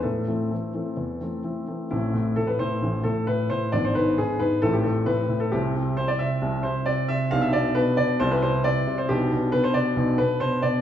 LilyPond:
<<
  \new Staff \with { instrumentName = "Grand piano" } { \time 4/4 \key a \minor \tempo 4 = 134 << { a'2. r4 | e'4 a'16 b'16 c''4 a'8 b'8 c''8 | d''16 c''16 b'8 gis'8 b'8 a'16 g'16 a'8 b'8. a'16 | g'4 c''16 d''16 e''4 c''8 d''8 e''8 |
f''16 e''16 d''8 b'8 d''8 c''16 b'16 c''8 d''8. c''16 | \key g \mixolydian g'4 b'16 c''16 d''4 b'8 c''8 d''8 | } \\ { r1 | <a c'>1 | <b d'>2 <c' e'>2 | <c' e'>1 |
<d' g'>2 <e' g'>2 | d'1 | } >> }
  \new Staff \with { instrumentName = "Grand piano" } { \clef bass \time 4/4 \key a \minor a,8 <e a c'>8 <e a c'>8 <e a c'>8 e,8 <e a c'>8 <e a c'>8 <e a c'>8 | <a,, a,>8 a,8 a,8 a,8 <a,, a,>8 a,8 a,8 a,8 | <gis,, gis,>8 gis,8 gis,8 gis,8 <a,, a,>8 a,8 a,8 a,8 | <c, c>8 c8 c8 c8 <c, c>8 c8 c8 c8 |
<b,, b,>8 b,8 b,8 b,8 <c, c>8 c8 c8 c8 | \key g \mixolydian <b,, b,>8 b,8 b,8 b,8 <b,, b,>8 b,8 b,8 b,8 | }
>>